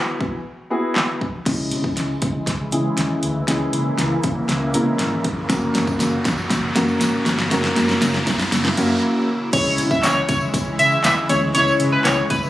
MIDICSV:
0, 0, Header, 1, 7, 480
1, 0, Start_track
1, 0, Tempo, 504202
1, 1393, Time_signature, 4, 2, 24, 8
1, 11899, End_track
2, 0, Start_track
2, 0, Title_t, "Analog synth lead"
2, 0, Program_c, 0, 81
2, 9073, Note_on_c, 0, 73, 110
2, 9251, Note_off_c, 0, 73, 0
2, 9432, Note_on_c, 0, 76, 86
2, 9522, Note_off_c, 0, 76, 0
2, 9553, Note_on_c, 0, 73, 90
2, 9731, Note_off_c, 0, 73, 0
2, 9793, Note_on_c, 0, 73, 87
2, 9882, Note_off_c, 0, 73, 0
2, 10273, Note_on_c, 0, 76, 87
2, 10452, Note_off_c, 0, 76, 0
2, 10512, Note_on_c, 0, 76, 78
2, 10602, Note_off_c, 0, 76, 0
2, 10752, Note_on_c, 0, 73, 80
2, 10842, Note_off_c, 0, 73, 0
2, 10992, Note_on_c, 0, 73, 108
2, 11171, Note_off_c, 0, 73, 0
2, 11351, Note_on_c, 0, 71, 79
2, 11441, Note_off_c, 0, 71, 0
2, 11471, Note_on_c, 0, 73, 86
2, 11650, Note_off_c, 0, 73, 0
2, 11712, Note_on_c, 0, 71, 95
2, 11801, Note_off_c, 0, 71, 0
2, 11899, End_track
3, 0, Start_track
3, 0, Title_t, "Grand piano"
3, 0, Program_c, 1, 0
3, 0, Note_on_c, 1, 59, 81
3, 0, Note_on_c, 1, 64, 72
3, 0, Note_on_c, 1, 66, 72
3, 0, Note_on_c, 1, 68, 85
3, 316, Note_off_c, 1, 59, 0
3, 317, Note_off_c, 1, 64, 0
3, 318, Note_off_c, 1, 66, 0
3, 319, Note_off_c, 1, 68, 0
3, 670, Note_on_c, 1, 59, 81
3, 672, Note_on_c, 1, 64, 77
3, 673, Note_on_c, 1, 66, 75
3, 675, Note_on_c, 1, 68, 90
3, 1125, Note_off_c, 1, 59, 0
3, 1126, Note_off_c, 1, 64, 0
3, 1127, Note_off_c, 1, 66, 0
3, 1128, Note_off_c, 1, 68, 0
3, 1390, Note_on_c, 1, 56, 87
3, 1391, Note_on_c, 1, 61, 78
3, 1393, Note_on_c, 1, 64, 74
3, 1395, Note_on_c, 1, 68, 96
3, 1997, Note_off_c, 1, 56, 0
3, 1997, Note_off_c, 1, 61, 0
3, 1998, Note_off_c, 1, 64, 0
3, 1999, Note_off_c, 1, 68, 0
3, 2590, Note_on_c, 1, 56, 82
3, 2591, Note_on_c, 1, 61, 71
3, 2593, Note_on_c, 1, 64, 74
3, 2594, Note_on_c, 1, 68, 90
3, 3045, Note_off_c, 1, 56, 0
3, 3046, Note_off_c, 1, 61, 0
3, 3047, Note_off_c, 1, 64, 0
3, 3047, Note_off_c, 1, 68, 0
3, 3310, Note_on_c, 1, 56, 84
3, 3311, Note_on_c, 1, 61, 77
3, 3313, Note_on_c, 1, 64, 76
3, 3314, Note_on_c, 1, 68, 94
3, 3917, Note_off_c, 1, 56, 0
3, 3917, Note_off_c, 1, 61, 0
3, 3918, Note_off_c, 1, 64, 0
3, 3919, Note_off_c, 1, 68, 0
3, 4510, Note_on_c, 1, 56, 85
3, 4512, Note_on_c, 1, 61, 74
3, 4513, Note_on_c, 1, 64, 75
3, 4515, Note_on_c, 1, 70, 93
3, 4965, Note_off_c, 1, 56, 0
3, 4966, Note_off_c, 1, 61, 0
3, 4967, Note_off_c, 1, 64, 0
3, 4968, Note_off_c, 1, 70, 0
3, 5230, Note_on_c, 1, 58, 89
3, 5231, Note_on_c, 1, 61, 82
3, 5233, Note_on_c, 1, 66, 82
3, 5235, Note_on_c, 1, 70, 96
3, 5837, Note_off_c, 1, 58, 0
3, 5837, Note_off_c, 1, 61, 0
3, 5838, Note_off_c, 1, 66, 0
3, 5839, Note_off_c, 1, 70, 0
3, 6430, Note_on_c, 1, 58, 85
3, 6432, Note_on_c, 1, 61, 79
3, 6433, Note_on_c, 1, 66, 80
3, 6435, Note_on_c, 1, 70, 95
3, 6885, Note_off_c, 1, 58, 0
3, 6886, Note_off_c, 1, 61, 0
3, 6887, Note_off_c, 1, 66, 0
3, 6888, Note_off_c, 1, 70, 0
3, 7150, Note_on_c, 1, 58, 92
3, 7152, Note_on_c, 1, 61, 82
3, 7153, Note_on_c, 1, 66, 86
3, 7155, Note_on_c, 1, 70, 100
3, 7757, Note_off_c, 1, 58, 0
3, 7757, Note_off_c, 1, 61, 0
3, 7758, Note_off_c, 1, 66, 0
3, 7759, Note_off_c, 1, 70, 0
3, 8350, Note_on_c, 1, 58, 84
3, 8352, Note_on_c, 1, 61, 81
3, 8353, Note_on_c, 1, 66, 84
3, 8355, Note_on_c, 1, 70, 96
3, 8805, Note_off_c, 1, 58, 0
3, 8806, Note_off_c, 1, 61, 0
3, 8807, Note_off_c, 1, 66, 0
3, 8808, Note_off_c, 1, 70, 0
3, 9071, Note_on_c, 1, 56, 77
3, 9072, Note_on_c, 1, 61, 72
3, 9073, Note_on_c, 1, 64, 71
3, 9074, Note_on_c, 1, 68, 74
3, 9075, Note_on_c, 1, 73, 91
3, 9677, Note_off_c, 1, 56, 0
3, 9677, Note_off_c, 1, 61, 0
3, 9678, Note_off_c, 1, 64, 0
3, 9679, Note_off_c, 1, 68, 0
3, 9679, Note_off_c, 1, 73, 0
3, 10750, Note_on_c, 1, 56, 81
3, 10751, Note_on_c, 1, 61, 72
3, 10752, Note_on_c, 1, 64, 72
3, 10753, Note_on_c, 1, 68, 70
3, 10754, Note_on_c, 1, 73, 87
3, 10902, Note_off_c, 1, 56, 0
3, 10903, Note_off_c, 1, 61, 0
3, 10904, Note_off_c, 1, 64, 0
3, 10904, Note_off_c, 1, 68, 0
3, 10905, Note_off_c, 1, 73, 0
3, 10990, Note_on_c, 1, 56, 81
3, 10992, Note_on_c, 1, 61, 74
3, 10993, Note_on_c, 1, 64, 75
3, 10994, Note_on_c, 1, 68, 72
3, 10995, Note_on_c, 1, 73, 92
3, 11597, Note_off_c, 1, 56, 0
3, 11597, Note_off_c, 1, 61, 0
3, 11598, Note_off_c, 1, 64, 0
3, 11598, Note_off_c, 1, 68, 0
3, 11599, Note_off_c, 1, 73, 0
3, 11899, End_track
4, 0, Start_track
4, 0, Title_t, "Analog synth pad"
4, 0, Program_c, 2, 89
4, 1393, Note_on_c, 2, 49, 81
4, 1393, Note_on_c, 2, 52, 76
4, 1393, Note_on_c, 2, 56, 75
4, 1393, Note_on_c, 2, 64, 88
4, 3294, Note_off_c, 2, 56, 0
4, 3312, Note_on_c, 2, 58, 79
4, 5195, Note_off_c, 2, 52, 0
4, 5195, Note_off_c, 2, 64, 0
4, 5213, Note_off_c, 2, 58, 0
4, 5232, Note_on_c, 2, 54, 82
4, 5232, Note_on_c, 2, 58, 81
4, 5232, Note_on_c, 2, 66, 95
4, 7133, Note_off_c, 2, 66, 0
4, 7152, Note_on_c, 2, 64, 96
4, 9034, Note_off_c, 2, 54, 0
4, 9034, Note_off_c, 2, 58, 0
4, 9035, Note_off_c, 2, 49, 0
4, 9053, Note_off_c, 2, 64, 0
4, 9073, Note_on_c, 2, 56, 81
4, 9073, Note_on_c, 2, 64, 99
4, 9074, Note_on_c, 2, 49, 86
4, 9074, Note_on_c, 2, 52, 82
4, 11899, Note_off_c, 2, 49, 0
4, 11899, Note_off_c, 2, 52, 0
4, 11899, Note_off_c, 2, 56, 0
4, 11899, Note_off_c, 2, 64, 0
4, 11899, End_track
5, 0, Start_track
5, 0, Title_t, "Fingered electric bass"
5, 0, Program_c, 3, 33
5, 1393, Note_on_c, 3, 37, 94
5, 1633, Note_on_c, 3, 49, 87
5, 1647, Note_off_c, 3, 37, 0
5, 1789, Note_off_c, 3, 49, 0
5, 1873, Note_on_c, 3, 37, 104
5, 2029, Note_off_c, 3, 37, 0
5, 2115, Note_on_c, 3, 49, 100
5, 2270, Note_off_c, 3, 49, 0
5, 2351, Note_on_c, 3, 37, 106
5, 2507, Note_off_c, 3, 37, 0
5, 2593, Note_on_c, 3, 49, 90
5, 2749, Note_off_c, 3, 49, 0
5, 2833, Note_on_c, 3, 39, 91
5, 2989, Note_off_c, 3, 39, 0
5, 3073, Note_on_c, 3, 38, 91
5, 3229, Note_off_c, 3, 38, 0
5, 3313, Note_on_c, 3, 37, 109
5, 3469, Note_off_c, 3, 37, 0
5, 3553, Note_on_c, 3, 49, 94
5, 3709, Note_off_c, 3, 49, 0
5, 3793, Note_on_c, 3, 37, 99
5, 3949, Note_off_c, 3, 37, 0
5, 4035, Note_on_c, 3, 49, 104
5, 4191, Note_off_c, 3, 49, 0
5, 4273, Note_on_c, 3, 37, 104
5, 4513, Note_on_c, 3, 49, 99
5, 4527, Note_off_c, 3, 37, 0
5, 4669, Note_off_c, 3, 49, 0
5, 4752, Note_on_c, 3, 32, 95
5, 4908, Note_off_c, 3, 32, 0
5, 4995, Note_on_c, 3, 31, 86
5, 5151, Note_off_c, 3, 31, 0
5, 5233, Note_on_c, 3, 30, 109
5, 5389, Note_off_c, 3, 30, 0
5, 5472, Note_on_c, 3, 42, 95
5, 5628, Note_off_c, 3, 42, 0
5, 5713, Note_on_c, 3, 30, 99
5, 5869, Note_off_c, 3, 30, 0
5, 5955, Note_on_c, 3, 42, 99
5, 6110, Note_off_c, 3, 42, 0
5, 6191, Note_on_c, 3, 30, 105
5, 6347, Note_off_c, 3, 30, 0
5, 6432, Note_on_c, 3, 42, 96
5, 6588, Note_off_c, 3, 42, 0
5, 6672, Note_on_c, 3, 32, 93
5, 6829, Note_off_c, 3, 32, 0
5, 6912, Note_on_c, 3, 31, 94
5, 7069, Note_off_c, 3, 31, 0
5, 7152, Note_on_c, 3, 30, 109
5, 7308, Note_off_c, 3, 30, 0
5, 7392, Note_on_c, 3, 42, 102
5, 7548, Note_off_c, 3, 42, 0
5, 7633, Note_on_c, 3, 30, 115
5, 7789, Note_off_c, 3, 30, 0
5, 7875, Note_on_c, 3, 42, 100
5, 8030, Note_off_c, 3, 42, 0
5, 8112, Note_on_c, 3, 30, 110
5, 8268, Note_off_c, 3, 30, 0
5, 8352, Note_on_c, 3, 42, 100
5, 8508, Note_off_c, 3, 42, 0
5, 9074, Note_on_c, 3, 37, 106
5, 9313, Note_on_c, 3, 49, 97
5, 9327, Note_off_c, 3, 37, 0
5, 9469, Note_off_c, 3, 49, 0
5, 9553, Note_on_c, 3, 37, 106
5, 9709, Note_off_c, 3, 37, 0
5, 9795, Note_on_c, 3, 49, 107
5, 9950, Note_off_c, 3, 49, 0
5, 10031, Note_on_c, 3, 37, 111
5, 10188, Note_off_c, 3, 37, 0
5, 10274, Note_on_c, 3, 49, 97
5, 10429, Note_off_c, 3, 49, 0
5, 10514, Note_on_c, 3, 39, 100
5, 10669, Note_off_c, 3, 39, 0
5, 10753, Note_on_c, 3, 38, 101
5, 10909, Note_off_c, 3, 38, 0
5, 10993, Note_on_c, 3, 37, 109
5, 11149, Note_off_c, 3, 37, 0
5, 11232, Note_on_c, 3, 49, 100
5, 11388, Note_off_c, 3, 49, 0
5, 11472, Note_on_c, 3, 37, 104
5, 11628, Note_off_c, 3, 37, 0
5, 11715, Note_on_c, 3, 49, 111
5, 11870, Note_off_c, 3, 49, 0
5, 11899, End_track
6, 0, Start_track
6, 0, Title_t, "Riser"
6, 0, Program_c, 4, 103
6, 1393, Note_on_c, 4, 60, 86
6, 8593, Note_off_c, 4, 60, 0
6, 11899, End_track
7, 0, Start_track
7, 0, Title_t, "Drums"
7, 195, Note_on_c, 9, 36, 98
7, 291, Note_off_c, 9, 36, 0
7, 914, Note_on_c, 9, 39, 117
7, 917, Note_on_c, 9, 38, 97
7, 1009, Note_off_c, 9, 39, 0
7, 1013, Note_off_c, 9, 38, 0
7, 1155, Note_on_c, 9, 36, 88
7, 1250, Note_off_c, 9, 36, 0
7, 1392, Note_on_c, 9, 38, 50
7, 1392, Note_on_c, 9, 42, 93
7, 1392, Note_on_c, 9, 49, 94
7, 1393, Note_on_c, 9, 36, 115
7, 1487, Note_off_c, 9, 38, 0
7, 1487, Note_off_c, 9, 42, 0
7, 1487, Note_off_c, 9, 49, 0
7, 1488, Note_off_c, 9, 36, 0
7, 1632, Note_on_c, 9, 42, 82
7, 1727, Note_off_c, 9, 42, 0
7, 1752, Note_on_c, 9, 36, 91
7, 1847, Note_off_c, 9, 36, 0
7, 1872, Note_on_c, 9, 38, 57
7, 1874, Note_on_c, 9, 42, 89
7, 1967, Note_off_c, 9, 38, 0
7, 1970, Note_off_c, 9, 42, 0
7, 2111, Note_on_c, 9, 42, 68
7, 2115, Note_on_c, 9, 36, 96
7, 2206, Note_off_c, 9, 42, 0
7, 2210, Note_off_c, 9, 36, 0
7, 2351, Note_on_c, 9, 36, 77
7, 2352, Note_on_c, 9, 38, 59
7, 2354, Note_on_c, 9, 42, 88
7, 2446, Note_off_c, 9, 36, 0
7, 2447, Note_off_c, 9, 38, 0
7, 2449, Note_off_c, 9, 42, 0
7, 2592, Note_on_c, 9, 42, 70
7, 2688, Note_off_c, 9, 42, 0
7, 2832, Note_on_c, 9, 42, 97
7, 2833, Note_on_c, 9, 38, 65
7, 2927, Note_off_c, 9, 42, 0
7, 2928, Note_off_c, 9, 38, 0
7, 3073, Note_on_c, 9, 42, 68
7, 3168, Note_off_c, 9, 42, 0
7, 3312, Note_on_c, 9, 38, 70
7, 3312, Note_on_c, 9, 42, 98
7, 3407, Note_off_c, 9, 38, 0
7, 3407, Note_off_c, 9, 42, 0
7, 3552, Note_on_c, 9, 42, 85
7, 3647, Note_off_c, 9, 42, 0
7, 3792, Note_on_c, 9, 38, 76
7, 3795, Note_on_c, 9, 42, 93
7, 3888, Note_off_c, 9, 38, 0
7, 3890, Note_off_c, 9, 42, 0
7, 4032, Note_on_c, 9, 42, 74
7, 4035, Note_on_c, 9, 36, 101
7, 4127, Note_off_c, 9, 42, 0
7, 4131, Note_off_c, 9, 36, 0
7, 4272, Note_on_c, 9, 38, 73
7, 4275, Note_on_c, 9, 42, 84
7, 4368, Note_off_c, 9, 38, 0
7, 4370, Note_off_c, 9, 42, 0
7, 4513, Note_on_c, 9, 42, 71
7, 4608, Note_off_c, 9, 42, 0
7, 4752, Note_on_c, 9, 38, 83
7, 4752, Note_on_c, 9, 42, 101
7, 4847, Note_off_c, 9, 42, 0
7, 4848, Note_off_c, 9, 38, 0
7, 4993, Note_on_c, 9, 42, 68
7, 4995, Note_on_c, 9, 36, 87
7, 5088, Note_off_c, 9, 42, 0
7, 5090, Note_off_c, 9, 36, 0
7, 5232, Note_on_c, 9, 38, 84
7, 5232, Note_on_c, 9, 42, 101
7, 5233, Note_on_c, 9, 36, 121
7, 5234, Note_on_c, 9, 54, 48
7, 5327, Note_off_c, 9, 38, 0
7, 5328, Note_off_c, 9, 36, 0
7, 5328, Note_off_c, 9, 42, 0
7, 5329, Note_off_c, 9, 54, 0
7, 5469, Note_on_c, 9, 54, 49
7, 5471, Note_on_c, 9, 42, 84
7, 5472, Note_on_c, 9, 38, 92
7, 5564, Note_off_c, 9, 54, 0
7, 5567, Note_off_c, 9, 38, 0
7, 5567, Note_off_c, 9, 42, 0
7, 5592, Note_on_c, 9, 36, 91
7, 5594, Note_on_c, 9, 54, 33
7, 5687, Note_off_c, 9, 36, 0
7, 5690, Note_off_c, 9, 54, 0
7, 5711, Note_on_c, 9, 54, 79
7, 5712, Note_on_c, 9, 38, 86
7, 5714, Note_on_c, 9, 42, 95
7, 5806, Note_off_c, 9, 54, 0
7, 5807, Note_off_c, 9, 38, 0
7, 5809, Note_off_c, 9, 42, 0
7, 5951, Note_on_c, 9, 42, 70
7, 5952, Note_on_c, 9, 38, 94
7, 5952, Note_on_c, 9, 54, 52
7, 5955, Note_on_c, 9, 36, 102
7, 6046, Note_off_c, 9, 42, 0
7, 6047, Note_off_c, 9, 38, 0
7, 6047, Note_off_c, 9, 54, 0
7, 6050, Note_off_c, 9, 36, 0
7, 6071, Note_on_c, 9, 54, 33
7, 6166, Note_off_c, 9, 54, 0
7, 6191, Note_on_c, 9, 36, 81
7, 6192, Note_on_c, 9, 38, 99
7, 6192, Note_on_c, 9, 54, 55
7, 6194, Note_on_c, 9, 42, 91
7, 6286, Note_off_c, 9, 36, 0
7, 6287, Note_off_c, 9, 38, 0
7, 6287, Note_off_c, 9, 54, 0
7, 6289, Note_off_c, 9, 42, 0
7, 6432, Note_on_c, 9, 38, 99
7, 6432, Note_on_c, 9, 42, 70
7, 6432, Note_on_c, 9, 54, 53
7, 6527, Note_off_c, 9, 38, 0
7, 6527, Note_off_c, 9, 54, 0
7, 6528, Note_off_c, 9, 42, 0
7, 6552, Note_on_c, 9, 54, 31
7, 6647, Note_off_c, 9, 54, 0
7, 6671, Note_on_c, 9, 42, 108
7, 6672, Note_on_c, 9, 38, 106
7, 6672, Note_on_c, 9, 54, 85
7, 6766, Note_off_c, 9, 42, 0
7, 6767, Note_off_c, 9, 38, 0
7, 6767, Note_off_c, 9, 54, 0
7, 6912, Note_on_c, 9, 38, 104
7, 6912, Note_on_c, 9, 42, 70
7, 6914, Note_on_c, 9, 54, 53
7, 7007, Note_off_c, 9, 38, 0
7, 7007, Note_off_c, 9, 42, 0
7, 7010, Note_off_c, 9, 54, 0
7, 7031, Note_on_c, 9, 38, 102
7, 7127, Note_off_c, 9, 38, 0
7, 7152, Note_on_c, 9, 38, 101
7, 7152, Note_on_c, 9, 42, 105
7, 7154, Note_on_c, 9, 54, 46
7, 7247, Note_off_c, 9, 38, 0
7, 7247, Note_off_c, 9, 42, 0
7, 7249, Note_off_c, 9, 54, 0
7, 7272, Note_on_c, 9, 38, 107
7, 7367, Note_off_c, 9, 38, 0
7, 7389, Note_on_c, 9, 54, 51
7, 7391, Note_on_c, 9, 38, 109
7, 7391, Note_on_c, 9, 42, 86
7, 7484, Note_off_c, 9, 54, 0
7, 7486, Note_off_c, 9, 38, 0
7, 7486, Note_off_c, 9, 42, 0
7, 7512, Note_on_c, 9, 38, 101
7, 7515, Note_on_c, 9, 54, 36
7, 7607, Note_off_c, 9, 38, 0
7, 7610, Note_off_c, 9, 54, 0
7, 7631, Note_on_c, 9, 54, 78
7, 7632, Note_on_c, 9, 38, 108
7, 7634, Note_on_c, 9, 42, 97
7, 7726, Note_off_c, 9, 54, 0
7, 7727, Note_off_c, 9, 38, 0
7, 7729, Note_off_c, 9, 42, 0
7, 7752, Note_on_c, 9, 38, 107
7, 7847, Note_off_c, 9, 38, 0
7, 7872, Note_on_c, 9, 38, 114
7, 7872, Note_on_c, 9, 42, 76
7, 7872, Note_on_c, 9, 54, 52
7, 7875, Note_on_c, 9, 36, 105
7, 7967, Note_off_c, 9, 42, 0
7, 7967, Note_off_c, 9, 54, 0
7, 7968, Note_off_c, 9, 38, 0
7, 7970, Note_off_c, 9, 36, 0
7, 7992, Note_on_c, 9, 38, 112
7, 7992, Note_on_c, 9, 54, 34
7, 8087, Note_off_c, 9, 38, 0
7, 8087, Note_off_c, 9, 54, 0
7, 8112, Note_on_c, 9, 38, 112
7, 8113, Note_on_c, 9, 54, 54
7, 8114, Note_on_c, 9, 42, 92
7, 8207, Note_off_c, 9, 38, 0
7, 8208, Note_off_c, 9, 54, 0
7, 8209, Note_off_c, 9, 42, 0
7, 8232, Note_on_c, 9, 38, 122
7, 8327, Note_off_c, 9, 38, 0
7, 8352, Note_on_c, 9, 54, 53
7, 8353, Note_on_c, 9, 42, 71
7, 8448, Note_off_c, 9, 42, 0
7, 8448, Note_off_c, 9, 54, 0
7, 9073, Note_on_c, 9, 36, 119
7, 9073, Note_on_c, 9, 42, 105
7, 9073, Note_on_c, 9, 49, 107
7, 9074, Note_on_c, 9, 54, 50
7, 9168, Note_off_c, 9, 36, 0
7, 9168, Note_off_c, 9, 42, 0
7, 9168, Note_off_c, 9, 49, 0
7, 9169, Note_off_c, 9, 54, 0
7, 9193, Note_on_c, 9, 54, 34
7, 9288, Note_off_c, 9, 54, 0
7, 9309, Note_on_c, 9, 54, 51
7, 9312, Note_on_c, 9, 42, 91
7, 9404, Note_off_c, 9, 54, 0
7, 9407, Note_off_c, 9, 42, 0
7, 9432, Note_on_c, 9, 36, 97
7, 9435, Note_on_c, 9, 54, 34
7, 9528, Note_off_c, 9, 36, 0
7, 9530, Note_off_c, 9, 54, 0
7, 9551, Note_on_c, 9, 54, 85
7, 9553, Note_on_c, 9, 39, 127
7, 9555, Note_on_c, 9, 42, 96
7, 9556, Note_on_c, 9, 38, 94
7, 9646, Note_off_c, 9, 54, 0
7, 9648, Note_off_c, 9, 39, 0
7, 9651, Note_off_c, 9, 38, 0
7, 9651, Note_off_c, 9, 42, 0
7, 9792, Note_on_c, 9, 42, 75
7, 9792, Note_on_c, 9, 54, 53
7, 9796, Note_on_c, 9, 36, 108
7, 9887, Note_off_c, 9, 42, 0
7, 9887, Note_off_c, 9, 54, 0
7, 9891, Note_off_c, 9, 36, 0
7, 9911, Note_on_c, 9, 54, 32
7, 10006, Note_off_c, 9, 54, 0
7, 10031, Note_on_c, 9, 36, 82
7, 10032, Note_on_c, 9, 54, 56
7, 10035, Note_on_c, 9, 42, 87
7, 10127, Note_off_c, 9, 36, 0
7, 10127, Note_off_c, 9, 54, 0
7, 10130, Note_off_c, 9, 42, 0
7, 10272, Note_on_c, 9, 54, 57
7, 10273, Note_on_c, 9, 42, 73
7, 10367, Note_off_c, 9, 54, 0
7, 10368, Note_off_c, 9, 42, 0
7, 10391, Note_on_c, 9, 54, 32
7, 10487, Note_off_c, 9, 54, 0
7, 10511, Note_on_c, 9, 42, 100
7, 10511, Note_on_c, 9, 54, 87
7, 10514, Note_on_c, 9, 39, 127
7, 10517, Note_on_c, 9, 38, 106
7, 10606, Note_off_c, 9, 54, 0
7, 10607, Note_off_c, 9, 42, 0
7, 10609, Note_off_c, 9, 39, 0
7, 10613, Note_off_c, 9, 38, 0
7, 10752, Note_on_c, 9, 42, 71
7, 10755, Note_on_c, 9, 54, 57
7, 10847, Note_off_c, 9, 42, 0
7, 10850, Note_off_c, 9, 54, 0
7, 10992, Note_on_c, 9, 42, 104
7, 10994, Note_on_c, 9, 54, 51
7, 11087, Note_off_c, 9, 42, 0
7, 11089, Note_off_c, 9, 54, 0
7, 11114, Note_on_c, 9, 54, 35
7, 11209, Note_off_c, 9, 54, 0
7, 11229, Note_on_c, 9, 54, 51
7, 11232, Note_on_c, 9, 42, 91
7, 11324, Note_off_c, 9, 54, 0
7, 11327, Note_off_c, 9, 42, 0
7, 11471, Note_on_c, 9, 39, 125
7, 11471, Note_on_c, 9, 54, 81
7, 11474, Note_on_c, 9, 42, 98
7, 11475, Note_on_c, 9, 38, 98
7, 11567, Note_off_c, 9, 39, 0
7, 11567, Note_off_c, 9, 54, 0
7, 11569, Note_off_c, 9, 42, 0
7, 11570, Note_off_c, 9, 38, 0
7, 11711, Note_on_c, 9, 42, 74
7, 11712, Note_on_c, 9, 54, 51
7, 11715, Note_on_c, 9, 36, 110
7, 11807, Note_off_c, 9, 42, 0
7, 11807, Note_off_c, 9, 54, 0
7, 11810, Note_off_c, 9, 36, 0
7, 11832, Note_on_c, 9, 54, 35
7, 11899, Note_off_c, 9, 54, 0
7, 11899, End_track
0, 0, End_of_file